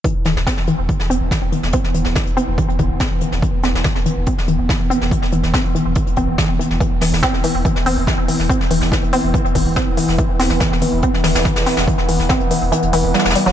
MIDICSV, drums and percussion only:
0, 0, Header, 1, 2, 480
1, 0, Start_track
1, 0, Tempo, 422535
1, 51, Time_signature, 4, 2, 24, 8
1, 15360, End_track
2, 0, Start_track
2, 0, Title_t, "Drums"
2, 50, Note_on_c, 9, 36, 109
2, 51, Note_on_c, 9, 42, 89
2, 164, Note_off_c, 9, 36, 0
2, 164, Note_off_c, 9, 42, 0
2, 280, Note_on_c, 9, 42, 68
2, 290, Note_on_c, 9, 38, 54
2, 394, Note_off_c, 9, 42, 0
2, 404, Note_off_c, 9, 38, 0
2, 420, Note_on_c, 9, 38, 52
2, 529, Note_on_c, 9, 42, 90
2, 530, Note_on_c, 9, 36, 107
2, 534, Note_off_c, 9, 38, 0
2, 535, Note_on_c, 9, 38, 113
2, 642, Note_off_c, 9, 42, 0
2, 644, Note_off_c, 9, 36, 0
2, 648, Note_off_c, 9, 38, 0
2, 652, Note_on_c, 9, 38, 58
2, 761, Note_on_c, 9, 42, 60
2, 766, Note_off_c, 9, 38, 0
2, 875, Note_off_c, 9, 42, 0
2, 1010, Note_on_c, 9, 36, 114
2, 1014, Note_on_c, 9, 42, 74
2, 1124, Note_off_c, 9, 36, 0
2, 1128, Note_off_c, 9, 42, 0
2, 1131, Note_on_c, 9, 38, 49
2, 1244, Note_off_c, 9, 38, 0
2, 1255, Note_on_c, 9, 42, 68
2, 1369, Note_off_c, 9, 42, 0
2, 1489, Note_on_c, 9, 42, 87
2, 1490, Note_on_c, 9, 36, 112
2, 1497, Note_on_c, 9, 38, 113
2, 1602, Note_off_c, 9, 42, 0
2, 1604, Note_off_c, 9, 36, 0
2, 1610, Note_off_c, 9, 38, 0
2, 1729, Note_on_c, 9, 42, 64
2, 1842, Note_off_c, 9, 42, 0
2, 1856, Note_on_c, 9, 38, 48
2, 1959, Note_on_c, 9, 42, 84
2, 1969, Note_off_c, 9, 38, 0
2, 1970, Note_on_c, 9, 36, 116
2, 2073, Note_off_c, 9, 42, 0
2, 2084, Note_off_c, 9, 36, 0
2, 2093, Note_on_c, 9, 38, 45
2, 2204, Note_on_c, 9, 42, 70
2, 2207, Note_off_c, 9, 38, 0
2, 2318, Note_off_c, 9, 42, 0
2, 2323, Note_on_c, 9, 38, 39
2, 2436, Note_off_c, 9, 38, 0
2, 2445, Note_on_c, 9, 42, 92
2, 2450, Note_on_c, 9, 36, 112
2, 2452, Note_on_c, 9, 38, 116
2, 2559, Note_off_c, 9, 42, 0
2, 2564, Note_off_c, 9, 36, 0
2, 2566, Note_off_c, 9, 38, 0
2, 2575, Note_on_c, 9, 42, 46
2, 2688, Note_off_c, 9, 42, 0
2, 2693, Note_on_c, 9, 42, 63
2, 2807, Note_off_c, 9, 42, 0
2, 2929, Note_on_c, 9, 42, 88
2, 2930, Note_on_c, 9, 36, 118
2, 3043, Note_off_c, 9, 42, 0
2, 3044, Note_off_c, 9, 36, 0
2, 3061, Note_on_c, 9, 42, 40
2, 3165, Note_off_c, 9, 42, 0
2, 3165, Note_on_c, 9, 42, 67
2, 3170, Note_on_c, 9, 36, 59
2, 3278, Note_off_c, 9, 42, 0
2, 3283, Note_off_c, 9, 36, 0
2, 3405, Note_on_c, 9, 42, 83
2, 3410, Note_on_c, 9, 36, 121
2, 3415, Note_on_c, 9, 38, 116
2, 3519, Note_off_c, 9, 42, 0
2, 3524, Note_off_c, 9, 36, 0
2, 3529, Note_off_c, 9, 38, 0
2, 3644, Note_on_c, 9, 42, 67
2, 3757, Note_off_c, 9, 42, 0
2, 3774, Note_on_c, 9, 38, 42
2, 3887, Note_off_c, 9, 38, 0
2, 3890, Note_on_c, 9, 36, 113
2, 3894, Note_on_c, 9, 42, 79
2, 4003, Note_off_c, 9, 36, 0
2, 4008, Note_off_c, 9, 42, 0
2, 4124, Note_on_c, 9, 42, 60
2, 4131, Note_on_c, 9, 38, 52
2, 4237, Note_off_c, 9, 42, 0
2, 4245, Note_off_c, 9, 38, 0
2, 4264, Note_on_c, 9, 38, 62
2, 4364, Note_off_c, 9, 38, 0
2, 4364, Note_on_c, 9, 38, 113
2, 4370, Note_on_c, 9, 36, 119
2, 4372, Note_on_c, 9, 42, 80
2, 4478, Note_off_c, 9, 38, 0
2, 4483, Note_off_c, 9, 36, 0
2, 4485, Note_off_c, 9, 42, 0
2, 4494, Note_on_c, 9, 38, 52
2, 4608, Note_off_c, 9, 38, 0
2, 4608, Note_on_c, 9, 42, 74
2, 4722, Note_off_c, 9, 42, 0
2, 4842, Note_on_c, 9, 42, 72
2, 4850, Note_on_c, 9, 36, 120
2, 4956, Note_off_c, 9, 42, 0
2, 4964, Note_off_c, 9, 36, 0
2, 4979, Note_on_c, 9, 38, 46
2, 5084, Note_on_c, 9, 42, 63
2, 5093, Note_off_c, 9, 38, 0
2, 5198, Note_off_c, 9, 42, 0
2, 5330, Note_on_c, 9, 36, 127
2, 5332, Note_on_c, 9, 42, 77
2, 5338, Note_on_c, 9, 38, 118
2, 5443, Note_off_c, 9, 36, 0
2, 5445, Note_off_c, 9, 42, 0
2, 5452, Note_off_c, 9, 38, 0
2, 5574, Note_on_c, 9, 42, 70
2, 5688, Note_off_c, 9, 42, 0
2, 5696, Note_on_c, 9, 38, 50
2, 5809, Note_off_c, 9, 38, 0
2, 5810, Note_on_c, 9, 36, 115
2, 5813, Note_on_c, 9, 42, 84
2, 5923, Note_off_c, 9, 36, 0
2, 5926, Note_off_c, 9, 42, 0
2, 5934, Note_on_c, 9, 38, 44
2, 6040, Note_on_c, 9, 42, 68
2, 6048, Note_off_c, 9, 38, 0
2, 6154, Note_off_c, 9, 42, 0
2, 6173, Note_on_c, 9, 38, 39
2, 6287, Note_off_c, 9, 38, 0
2, 6290, Note_on_c, 9, 36, 112
2, 6293, Note_on_c, 9, 38, 121
2, 6299, Note_on_c, 9, 42, 88
2, 6404, Note_off_c, 9, 36, 0
2, 6406, Note_off_c, 9, 38, 0
2, 6412, Note_off_c, 9, 42, 0
2, 6416, Note_on_c, 9, 42, 38
2, 6529, Note_off_c, 9, 42, 0
2, 6534, Note_on_c, 9, 42, 64
2, 6648, Note_off_c, 9, 42, 0
2, 6761, Note_on_c, 9, 42, 82
2, 6770, Note_on_c, 9, 36, 118
2, 6875, Note_off_c, 9, 42, 0
2, 6884, Note_off_c, 9, 36, 0
2, 6893, Note_on_c, 9, 42, 44
2, 7002, Note_off_c, 9, 42, 0
2, 7002, Note_on_c, 9, 42, 64
2, 7010, Note_on_c, 9, 36, 62
2, 7115, Note_off_c, 9, 42, 0
2, 7124, Note_off_c, 9, 36, 0
2, 7250, Note_on_c, 9, 36, 122
2, 7251, Note_on_c, 9, 38, 115
2, 7257, Note_on_c, 9, 42, 88
2, 7364, Note_off_c, 9, 36, 0
2, 7364, Note_off_c, 9, 38, 0
2, 7370, Note_off_c, 9, 42, 0
2, 7503, Note_on_c, 9, 42, 71
2, 7617, Note_off_c, 9, 42, 0
2, 7619, Note_on_c, 9, 38, 36
2, 7729, Note_on_c, 9, 42, 81
2, 7730, Note_on_c, 9, 36, 109
2, 7733, Note_off_c, 9, 38, 0
2, 7842, Note_off_c, 9, 42, 0
2, 7844, Note_off_c, 9, 36, 0
2, 7963, Note_on_c, 9, 38, 51
2, 7971, Note_on_c, 9, 46, 107
2, 7976, Note_on_c, 9, 42, 62
2, 8077, Note_off_c, 9, 38, 0
2, 8084, Note_off_c, 9, 46, 0
2, 8090, Note_off_c, 9, 42, 0
2, 8107, Note_on_c, 9, 38, 53
2, 8206, Note_on_c, 9, 42, 86
2, 8211, Note_on_c, 9, 36, 108
2, 8212, Note_off_c, 9, 38, 0
2, 8212, Note_on_c, 9, 38, 114
2, 8320, Note_off_c, 9, 42, 0
2, 8324, Note_off_c, 9, 36, 0
2, 8325, Note_off_c, 9, 38, 0
2, 8337, Note_on_c, 9, 38, 49
2, 8447, Note_on_c, 9, 42, 73
2, 8450, Note_off_c, 9, 38, 0
2, 8451, Note_on_c, 9, 46, 103
2, 8560, Note_off_c, 9, 42, 0
2, 8564, Note_off_c, 9, 46, 0
2, 8689, Note_on_c, 9, 42, 84
2, 8691, Note_on_c, 9, 36, 112
2, 8803, Note_off_c, 9, 42, 0
2, 8804, Note_off_c, 9, 36, 0
2, 8814, Note_on_c, 9, 38, 50
2, 8928, Note_off_c, 9, 38, 0
2, 8931, Note_on_c, 9, 46, 101
2, 8934, Note_on_c, 9, 42, 61
2, 9044, Note_off_c, 9, 46, 0
2, 9048, Note_off_c, 9, 42, 0
2, 9171, Note_on_c, 9, 36, 121
2, 9173, Note_on_c, 9, 42, 87
2, 9178, Note_on_c, 9, 38, 110
2, 9284, Note_off_c, 9, 36, 0
2, 9286, Note_off_c, 9, 42, 0
2, 9291, Note_off_c, 9, 38, 0
2, 9411, Note_on_c, 9, 46, 105
2, 9415, Note_on_c, 9, 42, 60
2, 9525, Note_off_c, 9, 46, 0
2, 9529, Note_off_c, 9, 42, 0
2, 9538, Note_on_c, 9, 38, 45
2, 9651, Note_on_c, 9, 36, 110
2, 9652, Note_off_c, 9, 38, 0
2, 9658, Note_on_c, 9, 42, 84
2, 9764, Note_off_c, 9, 36, 0
2, 9772, Note_off_c, 9, 42, 0
2, 9779, Note_on_c, 9, 38, 43
2, 9888, Note_on_c, 9, 42, 66
2, 9891, Note_on_c, 9, 46, 103
2, 9892, Note_off_c, 9, 38, 0
2, 10002, Note_off_c, 9, 42, 0
2, 10005, Note_off_c, 9, 46, 0
2, 10013, Note_on_c, 9, 38, 37
2, 10127, Note_off_c, 9, 38, 0
2, 10131, Note_on_c, 9, 36, 107
2, 10137, Note_on_c, 9, 42, 93
2, 10144, Note_on_c, 9, 38, 104
2, 10244, Note_off_c, 9, 36, 0
2, 10251, Note_off_c, 9, 42, 0
2, 10258, Note_off_c, 9, 38, 0
2, 10266, Note_on_c, 9, 42, 43
2, 10368, Note_off_c, 9, 42, 0
2, 10368, Note_on_c, 9, 42, 69
2, 10371, Note_on_c, 9, 46, 95
2, 10482, Note_off_c, 9, 42, 0
2, 10484, Note_off_c, 9, 46, 0
2, 10610, Note_on_c, 9, 36, 112
2, 10615, Note_on_c, 9, 42, 83
2, 10724, Note_off_c, 9, 36, 0
2, 10728, Note_off_c, 9, 42, 0
2, 10740, Note_on_c, 9, 42, 44
2, 10850, Note_on_c, 9, 36, 59
2, 10851, Note_on_c, 9, 46, 95
2, 10853, Note_off_c, 9, 42, 0
2, 10853, Note_on_c, 9, 42, 68
2, 10964, Note_off_c, 9, 36, 0
2, 10964, Note_off_c, 9, 46, 0
2, 10966, Note_off_c, 9, 42, 0
2, 11088, Note_on_c, 9, 38, 108
2, 11090, Note_on_c, 9, 42, 83
2, 11091, Note_on_c, 9, 36, 115
2, 11202, Note_off_c, 9, 38, 0
2, 11204, Note_off_c, 9, 36, 0
2, 11204, Note_off_c, 9, 42, 0
2, 11330, Note_on_c, 9, 46, 97
2, 11336, Note_on_c, 9, 42, 73
2, 11444, Note_off_c, 9, 46, 0
2, 11450, Note_off_c, 9, 42, 0
2, 11457, Note_on_c, 9, 38, 41
2, 11566, Note_on_c, 9, 42, 79
2, 11570, Note_on_c, 9, 36, 107
2, 11571, Note_off_c, 9, 38, 0
2, 11679, Note_off_c, 9, 42, 0
2, 11684, Note_off_c, 9, 36, 0
2, 11810, Note_on_c, 9, 46, 101
2, 11816, Note_on_c, 9, 42, 60
2, 11820, Note_on_c, 9, 38, 58
2, 11924, Note_off_c, 9, 46, 0
2, 11926, Note_off_c, 9, 38, 0
2, 11926, Note_on_c, 9, 38, 57
2, 11929, Note_off_c, 9, 42, 0
2, 12040, Note_off_c, 9, 38, 0
2, 12045, Note_on_c, 9, 38, 104
2, 12049, Note_on_c, 9, 42, 93
2, 12050, Note_on_c, 9, 36, 111
2, 12158, Note_off_c, 9, 38, 0
2, 12163, Note_off_c, 9, 42, 0
2, 12164, Note_off_c, 9, 36, 0
2, 12189, Note_on_c, 9, 38, 58
2, 12284, Note_on_c, 9, 42, 74
2, 12290, Note_on_c, 9, 46, 96
2, 12303, Note_off_c, 9, 38, 0
2, 12397, Note_off_c, 9, 42, 0
2, 12404, Note_off_c, 9, 46, 0
2, 12523, Note_on_c, 9, 42, 84
2, 12530, Note_on_c, 9, 36, 111
2, 12637, Note_off_c, 9, 42, 0
2, 12644, Note_off_c, 9, 36, 0
2, 12658, Note_on_c, 9, 38, 53
2, 12766, Note_off_c, 9, 38, 0
2, 12766, Note_on_c, 9, 38, 110
2, 12770, Note_on_c, 9, 46, 98
2, 12775, Note_on_c, 9, 42, 76
2, 12880, Note_off_c, 9, 38, 0
2, 12884, Note_off_c, 9, 46, 0
2, 12888, Note_off_c, 9, 42, 0
2, 12896, Note_on_c, 9, 38, 102
2, 12896, Note_on_c, 9, 42, 83
2, 13006, Note_off_c, 9, 38, 0
2, 13006, Note_on_c, 9, 38, 99
2, 13010, Note_off_c, 9, 42, 0
2, 13010, Note_on_c, 9, 36, 107
2, 13017, Note_on_c, 9, 42, 80
2, 13120, Note_off_c, 9, 38, 0
2, 13124, Note_off_c, 9, 36, 0
2, 13130, Note_off_c, 9, 42, 0
2, 13130, Note_on_c, 9, 42, 85
2, 13133, Note_on_c, 9, 38, 102
2, 13243, Note_off_c, 9, 42, 0
2, 13246, Note_off_c, 9, 38, 0
2, 13246, Note_on_c, 9, 42, 78
2, 13250, Note_on_c, 9, 46, 97
2, 13256, Note_on_c, 9, 38, 97
2, 13359, Note_off_c, 9, 42, 0
2, 13364, Note_off_c, 9, 46, 0
2, 13370, Note_off_c, 9, 38, 0
2, 13370, Note_on_c, 9, 38, 100
2, 13383, Note_on_c, 9, 42, 77
2, 13484, Note_off_c, 9, 38, 0
2, 13490, Note_on_c, 9, 36, 112
2, 13492, Note_off_c, 9, 42, 0
2, 13492, Note_on_c, 9, 42, 87
2, 13604, Note_off_c, 9, 36, 0
2, 13606, Note_off_c, 9, 42, 0
2, 13611, Note_on_c, 9, 38, 51
2, 13725, Note_off_c, 9, 38, 0
2, 13726, Note_on_c, 9, 42, 64
2, 13731, Note_on_c, 9, 46, 107
2, 13839, Note_off_c, 9, 42, 0
2, 13844, Note_off_c, 9, 46, 0
2, 13851, Note_on_c, 9, 38, 37
2, 13965, Note_off_c, 9, 38, 0
2, 13965, Note_on_c, 9, 38, 106
2, 13970, Note_on_c, 9, 36, 109
2, 13974, Note_on_c, 9, 42, 90
2, 14078, Note_off_c, 9, 38, 0
2, 14084, Note_off_c, 9, 36, 0
2, 14088, Note_off_c, 9, 42, 0
2, 14088, Note_on_c, 9, 42, 40
2, 14201, Note_off_c, 9, 42, 0
2, 14204, Note_on_c, 9, 42, 68
2, 14210, Note_on_c, 9, 46, 96
2, 14317, Note_off_c, 9, 42, 0
2, 14324, Note_off_c, 9, 46, 0
2, 14451, Note_on_c, 9, 42, 89
2, 14565, Note_off_c, 9, 42, 0
2, 14567, Note_on_c, 9, 42, 45
2, 14681, Note_off_c, 9, 42, 0
2, 14687, Note_on_c, 9, 42, 76
2, 14691, Note_on_c, 9, 46, 100
2, 14801, Note_off_c, 9, 42, 0
2, 14804, Note_off_c, 9, 46, 0
2, 14928, Note_on_c, 9, 42, 65
2, 14931, Note_on_c, 9, 38, 87
2, 14988, Note_off_c, 9, 38, 0
2, 14988, Note_on_c, 9, 38, 92
2, 14990, Note_off_c, 9, 42, 0
2, 14990, Note_on_c, 9, 42, 64
2, 15051, Note_off_c, 9, 42, 0
2, 15051, Note_on_c, 9, 42, 64
2, 15058, Note_off_c, 9, 38, 0
2, 15058, Note_on_c, 9, 38, 82
2, 15105, Note_off_c, 9, 42, 0
2, 15105, Note_on_c, 9, 42, 69
2, 15114, Note_off_c, 9, 38, 0
2, 15114, Note_on_c, 9, 38, 89
2, 15170, Note_on_c, 9, 46, 96
2, 15173, Note_off_c, 9, 42, 0
2, 15173, Note_on_c, 9, 42, 67
2, 15227, Note_off_c, 9, 38, 0
2, 15284, Note_off_c, 9, 46, 0
2, 15286, Note_off_c, 9, 42, 0
2, 15294, Note_on_c, 9, 38, 43
2, 15360, Note_off_c, 9, 38, 0
2, 15360, End_track
0, 0, End_of_file